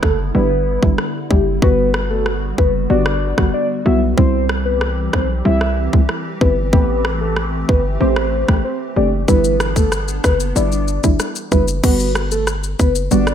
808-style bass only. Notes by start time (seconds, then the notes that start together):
0.03 F#1
0.35 G1
0.83 G1
1.31 F#1
1.62 G1
2.58 F#1
2.90 G1
3.38 G1
3.86 B1
4.18 C2
5.14 B1
5.45 C2
5.93 C2
6.41 G1
6.73 A1
7.69 G1
8.01 A1
8.48 A1
8.96 F#1
9.28 G1
10.24 F#1
10.56 G1
11.04 G1
11.52 F#1
11.84 G1
12.80 F#1
13.11 G1